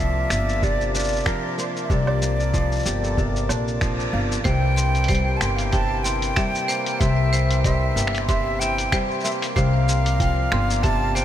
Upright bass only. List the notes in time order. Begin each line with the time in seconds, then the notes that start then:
Already playing: C2
0.30 G1
1.90 C2
2.85 G1
3.49 A#1
4.13 G1
4.45 C2
5.41 G1
7.00 C2
7.96 G1
9.56 C2
10.52 G1